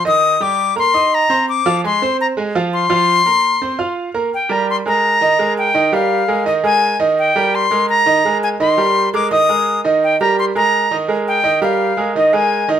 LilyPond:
<<
  \new Staff \with { instrumentName = "Flute" } { \time 4/4 \key ees \major \tempo 4 = 169 ees'''4 d'''4 c'''4 bes''4 | d'''4 c'''4 bes''8 r4 c'''8~ | c'''2. r4 | g''8 bes''8 c'''8 bes''2 g''8~ |
g''8 f''4. ees''8 aes''4 r8 | g''4 c'''4 bes''4. aes''8 | c'''4. d'''8 ees'''4. r8 | g''8 bes''8 c'''8 bes''4~ bes''16 r8. g''8~ |
g''8 f''4. ees''8 aes''4 r8 | }
  \new Staff \with { instrumentName = "Grand piano" } { \time 4/4 \key ees \major <ees ees' ees''>4 <g g' g''>4 <bes bes' bes''>8 <ees' ees'' ees'''>4 <c' c'' c'''>8~ | <c' c'' c'''>8 <f f' f''>8 <aes aes' aes''>8 <c' c'' c'''>4 <aes aes' aes''>8 <f f' f''>4 | <f f' f''>4 <bes bes' bes''>4 <c' c'' c'''>8 <f' f'' f'''>4 <bes bes' bes''>8 | r8 <g g' bes'>4 <aes aes' bes'>4 <ees ees' ees''>8 <aes aes' bes'>4 |
<ees ees' ees''>8 <g g' bes'>4 <aes aes' bes'>8 <ees ees' ees''>8 <aes aes' bes'>4 <ees ees' ees''>8~ | <ees ees' ees''>8 <g g' bes'>4 <aes aes' bes'>4 <ees ees' ees''>8 <aes aes' bes'>4 | <ees ees' ees''>8 <g g' bes'>4 <aes aes' bes'>8 <ees ees' ees''>8 <aes aes' bes'>4 <ees ees' ees''>8~ | <ees ees' ees''>8 <g g' bes'>4 <aes aes' bes'>4 <ees ees' ees''>8 <aes aes' bes'>4 |
<ees ees' ees''>8 <g g' bes'>4 <aes aes' bes'>8 <ees ees' ees''>8 <aes aes' bes'>4 <ees ees' ees''>8 | }
>>